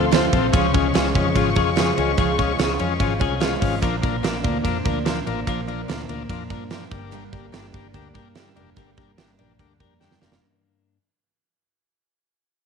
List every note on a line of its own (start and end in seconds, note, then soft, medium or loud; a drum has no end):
0.00 0.27 D2 medium
0.00 0.11 F3 medium
0.00 0.98 F3 medium
0.00 0.12 A3 medium
0.00 0.11 C4 medium
0.00 0.31 C4 medium
0.00 0.12 F4 medium
0.00 0.51 A4 medium
0.00 0.54 A4 medium
0.00 3.79 F5 medium
0.00 0.51 C6 medium
0.11 0.32 F2 loud
0.11 0.33 C3 loud
0.11 0.33 F3 loud
0.11 0.32 A3 loud
0.11 0.26 C4 loud
0.11 0.30 C4 loud
0.11 0.26 F4 medium
0.11 0.94 F4 medium
0.11 0.26 A4 loud
0.11 snare medium
0.11 ride medium
0.31 0.50 A#1 medium
0.31 0.53 F3 medium
0.31 0.54 A3 medium
0.31 0.53 C4 medium
0.31 0.47 C4 loud
0.31 0.47 F4 medium
0.31 0.47 A4 loud
0.31 kick medium
0.31 ride medium
0.52 0.71 C#2 loud
0.52 0.74 C#3 loud
0.52 0.74 F3 loud
0.52 0.74 G#3 loud
0.52 0.67 C#4 medium
0.52 0.72 C#4 loud
0.52 0.67 F4 loud
0.52 3.79 G#4 medium
0.52 0.67 G#4 loud
0.52 1.56 G#4 medium
0.52 3.79 C#6 medium
0.52 kick loud
0.52 ride medium
0.73 0.92 C#2 loud
0.73 0.94 F3 medium
0.73 0.94 G#3 medium
0.73 0.94 C#4 medium
0.73 0.88 C#4 loud
0.73 0.88 F4 medium
0.73 0.88 G#4 loud
0.73 kick medium
0.73 ride medium
0.94 1.12 C#2 medium
0.94 1.15 C#3 medium
0.94 1.15 F3 medium
0.94 1.15 G#3 medium
0.94 1.08 C#4 medium
0.94 1.13 C#4 loud
0.94 1.05 D#4 medium
0.94 1.08 F4 medium
0.94 1.08 G#4 medium
0.94 snare loud
0.94 ride medium
1.05 1.35 F4 medium
1.14 1.33 F2 medium
1.14 1.35 F3 medium
1.14 1.36 G#3 medium
1.14 1.35 C#4 medium
1.14 1.29 C#4 medium
1.14 1.29 F4 medium
1.14 1.29 G#4 medium
1.14 kick medium
1.14 ride medium
1.35 1.53 G#1 loud
1.35 1.56 C#3 medium
1.35 1.57 F3 medium
1.35 1.56 G#3 medium
1.35 1.50 C#4 loud
1.35 1.54 C#4 medium
1.35 1.77 F4 medium
1.35 1.50 F4 loud
1.35 1.50 G#4 loud
1.35 kick medium
1.35 ride medium
1.55 1.91 F2 loud
1.55 1.75 F3 medium
1.55 1.76 G#3 medium
1.55 1.76 C#4 medium
1.55 1.70 C#4 medium
1.55 1.70 F4 medium
1.55 1.70 G#4 loud
1.55 2.18 G#4 medium
1.55 kick medium
1.55 ride medium
1.76 1.97 C#3 medium
1.76 1.97 F3 medium
1.76 1.98 G#3 loud
1.76 1.91 C#4 loud
1.76 1.96 C#4 medium
1.76 1.91 F4 medium
1.76 2.59 F4 medium
1.76 1.91 G#4 loud
1.76 snare medium
1.76 ride medium
1.97 2.15 C#2 medium
1.97 2.17 F3 soft
1.97 2.18 G#3 medium
1.97 2.18 C#4 medium
1.97 2.12 C#4 medium
1.97 2.12 F4 medium
1.97 2.12 G#4 loud
1.97 ride medium
2.17 2.53 C#2 medium
2.17 2.38 C#3 loud
2.17 2.39 F3 loud
2.17 2.39 G#3 loud
2.17 2.32 C#4 loud
2.17 2.37 C#4 loud
2.17 2.32 F4 loud
2.17 2.32 G#4 loud
2.17 3.20 G#4 medium
2.17 kick loud
2.17 ride medium
2.38 2.58 F3 soft
2.38 2.59 G#3 soft
2.38 2.52 C#4 medium
2.38 2.59 C#4 soft
2.38 2.52 F4 medium
2.38 2.53 G#4 loud
2.38 kick medium
2.38 ride medium
2.59 2.77 C#2 medium
2.59 2.79 C#3 medium
2.59 2.80 F3 medium
2.59 2.79 G#3 medium
2.59 2.73 C#4 medium
2.59 2.77 C#4 medium
2.59 2.70 D#4 medium
2.59 2.73 F4 medium
2.59 2.73 G#4 medium
2.59 snare loud
2.59 ride medium
2.70 2.99 F4 medium
2.78 2.97 F2 medium
2.78 2.99 F3 soft
2.78 3.00 G#3 medium
2.78 3.00 C#4 medium
2.78 2.94 C#4 medium
2.78 2.94 F4 medium
2.78 2.94 G#4 loud
2.78 ride medium
2.99 3.18 G#1 loud
2.99 3.20 C#3 medium
2.99 3.21 F3 medium
2.99 3.20 G#3 medium
2.99 3.14 C#4 loud
2.99 3.18 C#4 medium
2.99 3.14 F4 medium
2.99 3.41 F4 medium
2.99 3.14 G#4 loud
2.99 kick medium
2.99 ride medium
3.19 3.56 C2 medium
3.19 3.40 F3 soft
3.19 3.41 G#3 medium
3.19 3.41 C#4 medium
3.19 3.34 C#4 medium
3.19 3.34 F4 medium
3.19 3.34 G#4 medium
3.19 3.83 G#4 medium
3.19 3.40 G#5 medium
3.19 kick medium
3.19 ride medium
3.40 3.61 C#3 medium
3.40 3.62 F3 medium
3.40 3.61 G#3 medium
3.40 3.55 C#4 loud
3.40 3.60 C#4 medium
3.40 3.55 F4 loud
3.40 4.24 F4 medium
3.40 3.55 G#4 loud
3.40 3.79 F5 medium
3.40 snare medium
3.40 ride medium
3.61 3.80 G#1 medium
3.61 3.81 F3 soft
3.61 3.83 G#3 medium
3.61 3.75 C#4 medium
3.61 3.82 C#4 medium
3.61 3.75 F4 medium
3.61 3.75 G#4 loud
3.61 kick medium
3.61 open hi-hat medium
3.61 ride medium
3.82 4.00 A#1 loud
3.82 4.03 A#2 medium
3.82 4.03 F3 medium
3.82 4.04 A#3 loud
3.82 3.96 D4 loud
3.82 4.02 D4 loud
3.82 3.96 F4 medium
3.82 3.96 A#4 loud
3.82 4.86 A#4 medium
3.82 kick loud
3.82 hi-hat pedal medium
3.82 ride medium
4.02 4.21 A#1 medium
4.02 4.23 A#3 soft
4.02 4.16 D4 medium
4.02 4.23 D4 soft
4.02 4.16 F4 medium
4.02 4.17 A#4 loud
4.02 kick loud
4.02 ride medium
4.06 4.23 F3 soft
4.23 4.41 A#1 medium
4.23 4.44 A#2 medium
4.23 4.44 F3 medium
4.23 4.44 A#3 medium
4.23 4.37 D4 medium
4.23 4.42 D4 medium
4.23 4.37 F4 medium
4.23 4.37 A#4 medium
4.23 snare loud
4.23 ride medium
4.43 4.62 D2 medium
4.43 4.65 F3 soft
4.43 4.65 A#3 medium
4.43 4.64 D4 medium
4.43 4.58 D4 medium
4.43 4.58 F4 medium
4.43 4.58 A#4 medium
4.43 kick loud
4.43 ride medium
4.64 4.82 F2 medium
4.64 4.85 A#2 medium
4.64 4.86 F3 medium
4.64 4.86 A#3 medium
4.64 4.78 D4 loud
4.64 4.78 F4 loud
4.64 4.78 A#4 loud
4.64 kick medium
4.64 ride medium
4.68 4.84 D4 medium
4.85 5.21 D2 medium
4.85 5.05 F3 soft
4.85 5.06 A#3 medium
4.85 4.99 D4 medium
4.85 5.06 D4 medium
4.85 4.99 F4 medium
4.85 4.99 A#4 medium
4.85 5.48 A#4 medium
4.85 kick loud
4.85 ride medium
5.05 5.27 A#2 medium
5.05 5.27 F3 medium
5.05 5.27 A#3 loud
5.05 5.19 D4 medium
5.05 5.25 D4 medium
5.05 5.19 F4 medium
5.05 5.19 A#4 loud
5.05 snare medium
5.05 ride medium
5.26 5.44 A1 loud
5.26 5.47 F3 soft
5.26 5.48 A#3 medium
5.26 5.40 D4 medium
5.26 5.47 D4 medium
5.26 5.40 F4 medium
5.26 5.41 A#4 loud
5.26 ride medium
5.47 5.82 A#1 medium
5.47 5.68 A#2 loud
5.47 5.68 F3 loud
5.47 5.68 A#3 loud
5.47 5.61 D4 loud
5.47 5.66 D4 medium
5.47 5.61 F4 medium
5.47 5.61 A#4 loud
5.47 6.50 A#4 medium
5.47 kick medium
5.47 ride medium
5.67 5.88 F3 soft
5.67 5.88 A#3 soft
5.67 5.88 D4 medium
5.67 5.82 D4 medium
5.67 5.82 F4 medium
5.67 5.82 A#4 loud
5.67 ride soft
5.88 6.06 D2 medium
5.88 6.09 A#2 medium
5.88 6.09 F3 medium
5.88 6.10 A#3 medium
5.88 6.02 D4 medium
5.88 6.08 D4 medium
5.88 6.02 F4 medium
5.88 6.02 A#4 medium
5.88 snare loud
5.88 ride medium
6.09 6.26 D2 medium
6.09 6.30 F3 medium
6.09 6.31 A#3 medium
6.09 6.23 D4 medium
6.09 6.30 D4 medium
6.09 6.23 F4 medium
6.09 6.23 A#4 loud
6.09 ride medium
6.29 6.47 F2 medium
6.29 6.50 A#2 medium
6.29 6.51 F3 medium
6.29 6.51 A#3 medium
6.29 6.43 D4 loud
6.29 6.49 D4 medium
6.29 6.44 F4 loud
6.29 6.44 A#4 loud
6.29 kick medium
6.29 ride medium
6.50 6.85 G2 medium
6.50 6.71 F3 soft
6.50 6.72 A#3 medium
6.50 6.64 D4 medium
6.50 6.71 D4 medium
6.50 6.64 F4 medium
6.50 6.64 A#4 medium
6.50 7.13 A#4 medium
6.50 kick medium
6.50 ride medium
6.70 6.91 A#2 medium
6.70 6.92 F3 loud
6.70 6.91 A#3 medium
6.70 6.84 D4 medium
6.70 6.90 D4 medium
6.70 6.85 F4 medium
6.70 6.85 A#4 loud
6.70 snare loud
6.70 ride medium
6.91 7.27 G1 medium
6.91 7.12 G2 medium
6.91 7.11 G3 medium
6.91 7.12 A#3 medium
6.91 7.24 D4 loud
6.91 7.12 D4 medium
6.91 7.24 G4 medium
6.91 7.24 A#4 loud
6.91 kick loud
6.91 ride medium
7.11 7.32 G2 medium
7.11 7.33 D3 loud
7.11 7.33 G3 loud
7.11 7.33 A#3 loud
7.11 7.31 D4 loud
7.11 8.15 A#4 medium
7.11 ride medium
7.32 7.50 G1 loud
7.32 7.52 G3 soft
7.32 7.53 A#3 soft
7.32 7.53 D4 medium
7.32 7.46 D4 loud
7.32 7.46 G4 medium
7.32 7.47 A#4 loud
7.32 kick medium
7.32 ride medium
7.52 7.71 G1 medium
7.52 7.73 G2 medium
7.52 7.74 D3 medium
7.52 7.74 G3 medium
7.52 7.73 A#3 medium
7.52 7.67 D4 medium
7.52 7.72 D4 medium
7.52 7.67 G4 medium
7.52 7.67 A#4 medium
7.52 snare loud
7.52 ride medium
7.73 7.92 G1 medium
7.73 7.93 G3 medium
7.73 7.95 A#3 medium
7.73 7.94 D4 medium
7.73 7.88 D4 medium
7.73 7.88 G4 medium
7.73 7.88 A#4 loud
7.73 kick loud
7.73 ride medium
7.93 8.12 D2 loud
7.93 8.15 D3 medium
7.93 8.15 G3 medium
7.93 8.15 A#3 medium
7.93 8.08 D4 loud
7.93 8.14 D4 medium
7.93 8.08 G4 loud
7.93 8.08 A#4 loud
7.93 kick medium
7.93 ride medium
8.14 8.50 G2 medium
8.14 8.36 A#3 medium
8.14 8.28 D4 medium
8.14 8.36 D4 medium
8.14 8.28 G4 medium
8.14 8.29 A#4 loud
8.14 8.77 A#4 medium
8.14 kick medium
8.14 ride soft
8.18 8.36 G3 medium
8.35 8.56 G2 medium
8.35 8.57 D3 medium
8.35 8.57 G3 medium
8.35 8.56 A#3 medium
8.35 8.49 D4 loud
8.35 8.54 D4 loud
8.35 8.50 G4 medium
8.35 8.50 A#4 loud
8.35 snare loud
8.35 ride medium
8.56 8.74 F1 medium
8.56 8.76 G3 medium
8.56 8.77 A#3 medium
8.56 8.77 D4 medium
8.56 8.70 D4 medium
8.56 8.70 G4 medium
8.56 8.70 A#4 medium
8.56 ride medium
8.76 9.12 G1 loud
8.76 8.97 G2 medium
8.76 8.98 D3 medium
8.76 8.98 G3 loud
8.76 8.97 A#3 loud
8.76 8.91 D4 loud
8.76 8.96 D4 loud
8.76 8.91 G4 medium
8.76 8.91 A#4 loud
8.76 9.80 A#4 medium
8.76 kick loud
8.76 ride medium
8.97 9.18 G3 soft
8.97 9.19 A#3 soft
8.97 9.18 D4 medium
8.97 9.11 D4 medium
8.97 9.11 G4 medium
8.97 9.11 A#4 loud
8.97 kick loud
8.97 ride soft
9.18 9.36 G1 medium
9.18 9.39 G2 medium
9.18 9.39 D3 medium
9.18 9.40 G3 medium
9.18 9.39 A#3 medium
9.18 9.32 D4 medium
9.18 9.37 D4 medium
9.18 9.32 G4 medium
9.18 9.32 A#4 medium
9.18 snare loud
9.18 ride medium
9.38 9.57 A#1 medium
9.38 9.59 G3 soft
9.38 9.60 A#3 medium
9.38 9.59 D4 medium
9.38 9.53 D4 medium
9.38 9.53 G4 medium
9.38 9.53 A#4 loud
9.38 ride medium
9.59 9.77 D2 loud
9.59 9.80 D3 medium
9.59 9.81 G3 medium
9.59 9.81 A#3 medium
9.59 9.73 D4 loud
9.59 9.79 D4 medium
9.59 9.73 G4 medium
9.59 9.73 A#4 loud
9.59 kick medium
9.59 ride medium
9.80 10.16 F2 medium
9.80 10.01 G3 soft
9.80 10.01 A#3 medium
9.80 9.94 D4 medium
9.80 10.01 D4 medium
9.80 9.94 G4 medium
9.80 9.94 A#4 medium
9.80 10.97 A#4 medium
9.80 9.99 A#5 medium
9.80 kick medium
9.80 ride medium
10.00 10.21 G2 medium
10.00 10.22 D3 medium
10.00 10.22 G3 medium
10.00 10.22 A#3 medium
10.00 10.14 D4 medium
10.00 10.21 D4 medium
10.00 10.14 G4 medium
10.00 10.15 A#4 medium
10.00 10.20 G5 medium
10.00 snare medium
10.11 snare medium
10.21 10.39 F1 medium
10.21 10.43 A#3 medium
10.21 10.35 D4 medium
10.21 10.42 D4 medium
10.21 10.35 G4 medium
10.21 10.35 A#4 medium
10.21 10.40 F5 medium
10.21 snare medium
10.25 10.44 G3 medium
10.32 snare medium